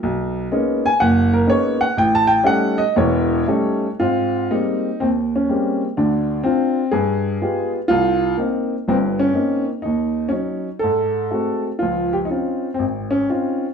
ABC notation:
X:1
M:4/4
L:1/16
Q:"Swing" 1/4=123
K:Ab
V:1 name="Upright piano"
z6 ^g2 ^f2 ^A2 ^c2 f2 | (3g2 =a2 g2 _g2 ^d2 ^c6- c z | F4 E4 C2 D4 z2 | =D4 C4 A6 z2 |
F4 z4 C2 D4 z2 | E4 D4 =A6 z2 | F2 G2 E4 C2 D4 z2 |]
V:2 name="Upright piano"
=B,,,4 [^G,^A,=B,^C^D]2 z2 ^F,,,4 [G,A,B,CD]2 z2 | =A,,,4 [G,=A,^C^D]2 z2 [=E,,,=E,,]4 [G,A,CD]2 z2 | [A,,C]4 [G,A,B,C]2 z2 E,,4 [G,A,B,C]2 z2 | [=D,,=D,]4 [=DF]2 z2 G,,4 [A,=B,FG]2 z2 |
C,,4 [B,CE]2 z2 [G,,,G,,]4 [B,CE]2 z2 | E,,4 [_G,DE]2 z2 A,,4 [A,=A,C_G]2 z2 | [D,,F,]4 [CDEF]2 z2 A,,,4 [CDEF]2 z2 |]